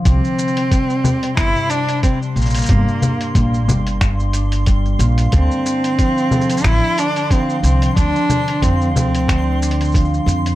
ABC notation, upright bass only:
X:1
M:4/4
L:1/8
Q:"Swing 16ths" 1/4=91
K:Dm
V:1 name="Upright bass" clef=bass
C,, z3 G,,, z2 B,,, | G,,, z B,,, G,,,4 B,,, | D,, z3 A,,, z2 C,, | D,, z F,, D,,4 F,, |]